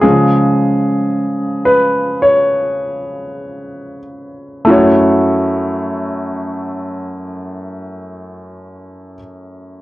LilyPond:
\new Staff \with { instrumentName = "Grand piano" } { \time 4/4 \key fis \minor \tempo 4 = 46 <cis eis gis gis'>4. b'8 cis''4. r8 | <fis, a e' fis' cis''>1 | }